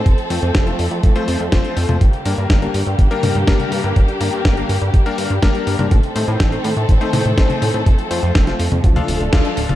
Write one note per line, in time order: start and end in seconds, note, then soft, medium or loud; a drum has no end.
0.00 1.97 C4 medium
0.00 1.97 A4 medium
0.06 0.15 F1 loud
0.06 1.99 F3 medium
0.06 1.99 A3 medium
0.06 kick loud
0.06 closed hi-hat medium
0.18 closed hi-hat soft
0.30 0.39 F2 medium
0.30 0.64 A3 medium
0.30 0.64 C4 medium
0.30 0.64 F4 medium
0.30 0.64 C5 medium
0.30 open hi-hat loud
0.43 0.52 F2 loud
0.55 0.73 F1 loud
0.55 kick loud
0.55 snare loud
0.55 closed hi-hat medium
0.67 0.83 A3 medium
0.67 0.83 C4 medium
0.67 0.83 F4 medium
0.67 0.83 C5 medium
0.67 closed hi-hat soft
0.79 0.88 F2 medium
0.79 open hi-hat loud
0.91 1.00 F2 loud
0.91 closed hi-hat soft
1.03 1.13 F1 loud
1.03 kick loud
1.03 closed hi-hat medium
1.16 1.41 A3 loud
1.16 1.41 C4 medium
1.16 1.41 F4 medium
1.16 1.41 C5 loud
1.16 closed hi-hat soft
1.28 1.37 F2 loud
1.28 open hi-hat loud
1.40 1.49 F2 loud
1.40 closed hi-hat soft
1.52 1.61 F1 loud
1.52 1.86 A3 medium
1.52 1.86 C4 medium
1.52 1.86 F4 medium
1.52 1.86 C5 loud
1.52 kick loud
1.52 snare loud
1.52 closed hi-hat medium
1.64 closed hi-hat soft
1.77 1.86 F2 medium
1.77 open hi-hat loud
1.89 1.98 F2 loud
1.89 2.00 A3 medium
1.89 2.00 C4 medium
1.89 2.00 F4 medium
1.89 2.00 C5 medium
1.89 closed hi-hat soft
1.89 high tom medium
2.01 2.10 G1 loud
2.01 5.87 D3 medium
2.01 5.87 G3 medium
2.01 5.87 A#3 medium
2.01 5.87 G4 medium
2.01 kick loud
2.01 closed hi-hat medium
2.13 closed hi-hat soft
2.25 2.35 G2 medium
2.25 2.59 G3 medium
2.25 2.59 A#3 medium
2.25 2.59 D4 medium
2.25 2.59 A#4 medium
2.25 open hi-hat loud
2.38 2.47 G2 loud
2.50 2.68 G1 loud
2.50 kick loud
2.50 snare loud
2.50 closed hi-hat medium
2.62 2.78 G3 medium
2.62 2.78 A#3 medium
2.62 2.78 D4 medium
2.62 2.78 A#4 medium
2.62 closed hi-hat soft
2.74 2.83 G2 medium
2.74 open hi-hat loud
2.87 2.95 G2 medium
2.87 closed hi-hat soft
2.99 3.08 G1 medium
2.99 kick loud
2.99 closed hi-hat medium
3.11 3.36 G3 loud
3.11 3.36 A#3 medium
3.11 3.36 D4 medium
3.11 3.36 A#4 loud
3.11 closed hi-hat soft
3.23 3.32 G2 medium
3.23 open hi-hat loud
3.23 high tom medium
3.35 3.44 G2 medium
3.35 closed hi-hat soft
3.47 3.56 G1 loud
3.47 3.81 G3 loud
3.47 3.81 A#3 medium
3.47 3.81 D4 medium
3.47 3.81 A#4 loud
3.47 kick loud
3.47 snare loud
3.47 closed hi-hat medium
3.60 closed hi-hat soft
3.60 high tom medium
3.72 3.81 G2 loud
3.72 open hi-hat loud
3.84 3.93 G2 loud
3.84 4.00 G3 medium
3.84 4.00 A#3 medium
3.84 4.00 D4 medium
3.84 4.00 A#4 medium
3.84 closed hi-hat soft
3.96 4.05 G1 loud
3.96 kick loud
3.96 closed hi-hat medium
4.08 closed hi-hat soft
4.21 4.30 G2 medium
4.21 4.54 G3 medium
4.21 4.54 A#3 medium
4.21 4.54 D4 medium
4.21 4.54 A#4 medium
4.21 open hi-hat loud
4.33 4.42 G2 loud
4.33 closed hi-hat soft
4.45 4.63 G1 loud
4.45 kick loud
4.45 snare loud
4.45 closed hi-hat medium
4.57 4.73 G3 medium
4.57 4.73 A#3 medium
4.57 4.73 D4 medium
4.57 4.73 A#4 medium
4.57 closed hi-hat soft
4.69 4.78 G2 medium
4.69 open hi-hat loud
4.81 4.91 G2 loud
4.81 closed hi-hat soft
4.94 5.03 G1 medium
4.94 kick loud
4.94 closed hi-hat medium
5.06 5.31 G3 loud
5.06 5.31 A#3 medium
5.06 5.31 D4 medium
5.06 5.31 A#4 loud
5.06 closed hi-hat soft
5.18 5.27 G2 medium
5.18 open hi-hat loud
5.30 5.39 G2 loud
5.30 closed hi-hat soft
5.42 5.52 G1 medium
5.42 5.76 G3 loud
5.42 5.76 A#3 medium
5.42 5.76 D4 medium
5.42 5.76 A#4 loud
5.42 kick loud
5.42 snare loud
5.42 closed hi-hat medium
5.55 closed hi-hat soft
5.67 5.76 G2 loud
5.67 open hi-hat loud
5.79 5.88 G2 loud
5.79 5.90 G3 medium
5.79 5.90 A#3 medium
5.79 5.90 D4 medium
5.79 5.90 A#4 medium
5.79 closed hi-hat soft
5.79 high tom medium
5.91 6.00 A1 loud
5.91 7.85 D#3 medium
5.91 8.81 A3 medium
5.91 7.85 C4 medium
5.91 8.81 A4 medium
5.91 kick loud
5.91 closed hi-hat medium
6.03 closed hi-hat soft
6.16 6.25 A2 medium
6.16 6.49 A3 medium
6.16 6.49 C4 medium
6.16 6.49 D#4 medium
6.16 6.49 C5 medium
6.16 open hi-hat loud
6.28 6.37 A2 loud
6.28 closed hi-hat soft
6.40 6.58 A1 loud
6.40 kick loud
6.40 snare loud
6.40 closed hi-hat medium
6.52 6.68 A3 medium
6.52 6.68 C4 medium
6.52 6.68 D#4 medium
6.52 6.68 C5 medium
6.52 closed hi-hat soft
6.64 6.73 A2 medium
6.64 open hi-hat loud
6.77 6.86 A2 loud
6.77 closed hi-hat soft
6.89 6.98 A1 medium
6.89 kick loud
6.89 closed hi-hat medium
7.01 7.26 A3 loud
7.01 7.26 C4 medium
7.01 7.26 D#4 medium
7.01 7.26 C5 loud
7.01 closed hi-hat soft
7.13 7.22 A2 medium
7.13 open hi-hat loud
7.13 high tom medium
7.25 7.34 A2 medium
7.25 closed hi-hat soft
7.38 7.47 A1 loud
7.38 7.71 A3 loud
7.38 7.71 C4 medium
7.38 7.71 D#4 medium
7.38 7.71 C5 loud
7.38 kick loud
7.38 snare loud
7.38 closed hi-hat medium
7.50 closed hi-hat soft
7.50 high tom medium
7.62 7.71 A2 loud
7.62 open hi-hat loud
7.74 7.83 A2 loud
7.74 7.85 A3 medium
7.74 7.85 C4 medium
7.74 7.85 D#4 medium
7.74 7.85 C5 medium
7.74 closed hi-hat soft
7.86 7.95 F1 loud
7.86 9.75 F3 medium
7.86 8.83 C4 medium
7.86 kick loud
7.86 closed hi-hat medium
7.99 closed hi-hat soft
8.11 8.20 F2 medium
8.11 8.44 A3 medium
8.11 8.44 C4 medium
8.11 8.44 F4 medium
8.11 8.44 C5 medium
8.11 open hi-hat loud
8.23 8.32 F2 loud
8.23 closed hi-hat soft
8.35 8.53 F1 loud
8.35 kick loud
8.35 snare loud
8.35 closed hi-hat medium
8.47 8.63 A3 medium
8.47 8.63 C4 medium
8.47 8.63 F4 medium
8.47 8.63 C5 medium
8.47 snare soft
8.47 closed hi-hat soft
8.60 8.69 F2 medium
8.60 open hi-hat loud
8.72 8.81 F2 loud
8.72 closed hi-hat soft
8.72 high tom medium
8.84 9.02 D2 loud
8.84 9.75 A3 medium
8.84 9.75 D4 medium
8.84 9.75 A4 medium
8.84 kick loud
8.84 closed hi-hat medium
8.96 9.21 D4 loud
8.96 9.21 F4 medium
8.96 9.21 A4 medium
8.96 9.21 F5 loud
8.96 closed hi-hat soft
8.96 high tom medium
9.08 9.17 D1 medium
9.08 open hi-hat loud
9.21 9.30 D1 medium
9.21 closed hi-hat soft
9.33 9.42 D2 medium
9.33 9.66 D4 loud
9.33 9.66 F4 medium
9.33 9.66 A4 medium
9.33 9.66 F5 loud
9.33 kick loud
9.33 snare loud
9.33 closed hi-hat medium
9.45 closed hi-hat soft
9.57 9.66 D1 medium
9.57 open hi-hat loud
9.69 9.75 D1 medium
9.69 9.75 D4 medium
9.69 9.75 F4 medium
9.69 9.75 A4 medium
9.69 9.75 F5 medium
9.69 closed hi-hat soft
9.69 high tom medium